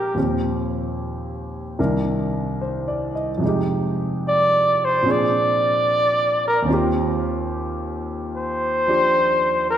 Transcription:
Already playing: grand piano A#2 F3 G#3 C4 D4 G4, muted trumpet G4
0.14 grand piano D#2 A#2 F3 C4
0.18 grand piano G4
1.79 grand piano C2 C3 D#3 D4 A#4
2.61 grand piano C5
2.88 grand piano D5
3.15 grand piano D#5
3.38 grand piano F2 C3
3.43 grand piano G#3 D#4
3.49 grand piano G4
4.28 muted trumpet D5
4.84 muted trumpet C5
5.03 grand piano A#2 F3 C4 D4
5.08 grand piano G#4, muted trumpet D5
6.48 muted trumpet A#4
6.62 grand piano D#2 D#3
6.68 grand piano C4 F4
6.73 grand piano G4
8.36 muted trumpet C5
8.87 grand piano F3 D4 G4
9.70 muted trumpet A#4

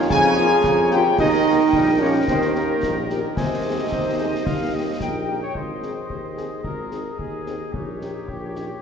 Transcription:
Already playing: euphonium F4, woodwind section C#5 G#5
0.09 tuba F2, trombone section C#3, euphonium G#4, trumpet section G#5, flute section G#5, woodwind section A#5, concert bass drum, snare
0.24 snare
0.37 trombone section F3, french horn section A#3 C#4 F4, snare
0.64 tuba F2, trombone section C#3, concert bass drum, snare
0.91 french horn section A#3 C#4 F4, euphonium G4, trumpet section G5, flute section G5, snare
1.18 tuba D#2, trombone section D#3, euphonium D#4, woodwind section A#4 G5, trumpet section D#5, flute section D#5, concert bass drum, snare, crash
1.46 french horn section A#3 D#4 G4
1.73 tuba A#1, trombone section G3, concert bass drum, snare
2.00 trombone section F3, french horn section A#3 D#4 G4, euphonium C#4, trumpet section C#5, flute section C#5
2.27 tuba D#2, trombone section D#3, euphonium C4, flute section C5, trumpet section C5, concert bass drum, snare
2.42 snare
2.54 french horn section A#3 D#4 G4, euphonium A#3, flute section A#4, trumpet section A#4, snare
2.83 tuba A#1, concert bass drum, snare
3.09 french horn section A#3 D#4 G4, snare
3.36 tuba D#2, trombone section C3, euphonium D#4, woodwind section C5 G#5, trumpet section D#5, flute section D#5, concert bass drum, snare
3.65 french horn section C4 D#4 G#4
3.91 tuba D#2, woodwind section C5, concert bass drum, snare
4.18 french horn section C4 D#4 G#4
4.45 tuba D#2, woodwind section F5, concert bass drum, snare
4.73 french horn section A#3 D#4 G4, woodwind section D#5
5.00 tuba A#1, trumpet section A#4, woodwind section G5, concert bass drum, snare
5.27 french horn section A#3 D#4 G4
5.41 trumpet section C#5
5.55 tuba G#1, woodwind section G#4 D#5, trumpet section C5, concert bass drum
5.82 french horn section C4 D#4 G#4, snare
6.08 tuba D#2, trumpet section C5, concert bass drum
6.36 french horn section C4 D#4 G#4, snare
6.64 tuba G#1, trumpet section A#4, concert bass drum
6.91 french horn section C4 D#4 G#4, snare
7.18 tuba D#2, trumpet section G#4, concert bass drum
7.46 french horn section C4 D#4 G#4, snare
7.73 tuba A#1, trumpet section D#4, woodwind section G4 C#5, concert bass drum
8.00 french horn section C#4 D#4 G4, snare
8.27 tuba A#1, trumpet section G4, concert bass drum
8.54 french horn section C#4 D#4 G4, snare

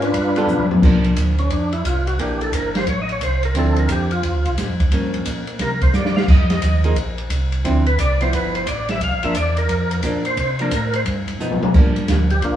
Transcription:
Already playing: tonewheel organ G#2 C#4
0.02 tonewheel organ D4 F4 B4, ride
0.14 tonewheel organ G2, kick, ride
0.36 hollow-body jazz guitar G3 B3 F4 A4, ride
0.47 tonewheel organ B2, hi-hat pedal, mid tom
0.58 tonewheel organ G2, floor tom
0.70 tonewheel organ F2, floor tom
0.82 tonewheel organ C2, hollow-body jazz guitar F3 A#3 D4, kick, crash
1.04 ride
1.16 tonewheel organ D2, kick, hi-hat pedal, ride
1.38 tonewheel organ C#4, ride
1.50 tonewheel organ F2 D4, kick, ride
1.72 tonewheel organ E4, ride
1.85 tonewheel organ C2 F4, kick, hi-hat pedal, ride
2.07 tonewheel organ F#4, ride
2.19 tonewheel organ A#1 G4, hollow-body jazz guitar E3 A#3 D4 G4, kick, ride
2.41 tonewheel organ A4, ride
2.53 tonewheel organ G1 A#4, kick, hi-hat pedal, ride
2.75 tonewheel organ C5, snare, ride
2.87 tonewheel organ A1 C#5, kick, ride
3.02 tonewheel organ D#5
3.09 tonewheel organ C#5, ride
3.21 tonewheel organ C2 C5, kick, hi-hat pedal, ride
3.43 tonewheel organ A#4, ride
3.55 tonewheel organ D2 A4, hollow-body jazz guitar D3 F3 C4 E4, kick, ride
3.76 tonewheel organ A#4, ride
3.89 tonewheel organ F2 G4, kick, hi-hat pedal, ride
4.11 tonewheel organ F4, ride
4.23 tonewheel organ E2, kick, ride
4.34 tonewheel organ D2
4.45 tonewheel organ C2, ride
4.58 tonewheel organ A2, kick, snare, hi-hat pedal, ride
4.69 tonewheel organ F2
4.80 tonewheel organ D2, kick, ride
4.92 tonewheel organ G2, hollow-body jazz guitar F3 A#3 C#4, kick, ride
5.14 tonewheel organ G2, ride
5.25 tonewheel organ A#2, kick, hi-hat pedal, ride
5.47 ride
5.59 tonewheel organ C3 A#4, kick, snare, ride
5.81 tonewheel organ C5, kick, ride
5.93 tonewheel organ G2 D5, snare, hi-hat pedal
6.05 snare
6.16 tonewheel organ F5, snare
6.28 tonewheel organ F2 D#5, kick, crash
6.50 snare, ride
6.62 tonewheel organ D#2, kick, hi-hat pedal, ride
6.84 hollow-body jazz guitar F3 A#3 D#4 G#4, ride
6.96 tonewheel organ A#1, kick, ride
7.18 ride
7.30 tonewheel organ C2, kick, hi-hat pedal, ride
7.52 ride
7.65 tonewheel organ D2, hollow-body jazz guitar D3 F3 C4 E4, kick, ride
7.86 tonewheel organ B4, ride
7.98 tonewheel organ C2 D5, kick, hi-hat pedal, ride
8.21 hollow-body jazz guitar F3 B3 E4, tonewheel organ C5, ride
8.33 tonewheel organ G1 B4, kick, ride
8.55 tonewheel organ C5, ride
8.67 tonewheel organ A1 D5, kick, hi-hat pedal, ride
8.89 tonewheel organ E5, snare, ride
9.01 tonewheel organ C2 F5, kick, ride
9.11 tonewheel organ A#1
9.23 tonewheel organ G1 E5, hollow-body jazz guitar F3 A#3 D4, ride
9.35 tonewheel organ E2 D5, kick, hi-hat pedal, ride
9.57 tonewheel organ A#4, ride
9.69 tonewheel organ F2, kick, ride
9.91 ride
10.03 tonewheel organ A#2, hollow-body jazz guitar F3 A#3 D4, kick, hi-hat pedal, ride
10.25 tonewheel organ C5, ride
10.37 tonewheel organ C3 C5, kick, ride
10.59 hollow-body jazz guitar F3 A#3 D4, tonewheel organ A#4, ride
10.71 tonewheel organ A2 A#4, kick, hi-hat pedal, ride
10.93 tonewheel organ C5, ride
11.06 tonewheel organ G2, kick, ride
11.27 tonewheel organ G2, ride
11.39 tonewheel organ B2, hollow-body jazz guitar F3 B3 D#4, hi-hat pedal
11.51 floor tom
11.63 floor tom
11.74 tonewheel organ G2, hollow-body jazz guitar F3 A#3 D4, kick, crash
11.96 ride
12.08 tonewheel organ D2, kick, snare, hi-hat pedal, ride
12.30 tonewheel organ G4, ride
12.42 tonewheel organ A#1 A#3 D4 F4, kick, ride

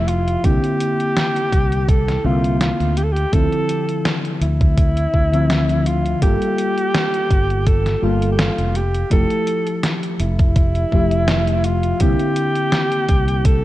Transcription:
Already playing: fretless electric bass F1, fm electric piano F3 A3 G4 E5
0.08 alto saxophone F4, closed hi-hat
0.28 closed hi-hat
0.43 fretless electric bass C2, fm electric piano D3 A#3 C4 E4, alto saxophone G4, kick, closed hi-hat
0.64 closed hi-hat
0.80 closed hi-hat
1.00 closed hi-hat
1.17 snare, closed hi-hat
1.36 closed hi-hat
1.52 fretless electric bass C2, kick, closed hi-hat
1.72 closed hi-hat
1.88 alto saxophone A4, kick, closed hi-hat
2.08 snare, closed hi-hat
2.24 fretless electric bass C2, fm electric piano D3 A#3 C4 E5, alto saxophone F4
2.44 closed hi-hat
2.61 alto saxophone F4, snare, closed hi-hat
2.80 fretless electric bass D2, closed hi-hat
2.97 alto saxophone G4, closed hi-hat
3.04 alto saxophone A4
3.12 alto saxophone G4
3.16 closed hi-hat
3.32 fretless electric bass D2, fm electric piano D3 F3 C4 E4, alto saxophone A4, kick, closed hi-hat
3.52 closed hi-hat
3.69 closed hi-hat
3.89 closed hi-hat
4.05 snare, closed hi-hat
4.25 closed hi-hat
4.41 fretless electric bass D2, alto saxophone E4, closed hi-hat
4.61 kick, closed hi-hat
4.77 kick, closed hi-hat
4.97 closed hi-hat
5.13 fretless electric bass D2, kick
5.32 fm electric piano D3 F3 C4 E5, closed hi-hat
5.50 snare, closed hi-hat
5.69 closed hi-hat
5.86 alto saxophone F4, closed hi-hat
6.06 closed hi-hat
6.21 fretless electric bass G1, fm electric piano G3 A#3 F4 A4, alto saxophone G4, kick, closed hi-hat
6.42 closed hi-hat
6.58 closed hi-hat
6.78 closed hi-hat
6.95 snare, closed hi-hat
7.14 closed hi-hat
7.31 fretless electric bass G1, kick, closed hi-hat
7.50 closed hi-hat
7.67 alto saxophone A4, kick, closed hi-hat
7.86 snare, closed hi-hat
8.02 fretless electric bass G1, fm electric piano G3 A#3 F4 A4, alto saxophone F4
8.22 closed hi-hat
8.32 alto saxophone G4
8.39 alto saxophone F4, snare, closed hi-hat
8.58 fretless electric bass F1, closed hi-hat
8.75 alto saxophone G4, closed hi-hat
8.95 closed hi-hat
9.10 fretless electric bass F1, fm electric piano F3 A3 E4 G4, alto saxophone A4, kick, closed hi-hat
9.31 closed hi-hat
9.47 closed hi-hat
9.67 closed hi-hat
9.83 snare, closed hi-hat
10.03 closed hi-hat
10.20 fretless electric bass F1, alto saxophone E4, closed hi-hat
10.39 kick, closed hi-hat
10.56 kick, closed hi-hat
10.75 closed hi-hat
10.91 fretless electric bass F1, fm electric piano F3 A3 G4 E5, kick
11.11 closed hi-hat
11.28 snare, closed hi-hat
11.47 closed hi-hat
11.64 alto saxophone F4, closed hi-hat
11.83 closed hi-hat
11.99 fretless electric bass C2, fm electric piano D3 A#3 C4 E4, alto saxophone G4, kick, closed hi-hat
12.19 closed hi-hat
12.36 closed hi-hat
12.55 closed hi-hat
12.72 snare, closed hi-hat
12.92 closed hi-hat
13.09 fretless electric bass C2, kick, closed hi-hat
13.28 closed hi-hat
13.45 alto saxophone A4, kick, closed hi-hat

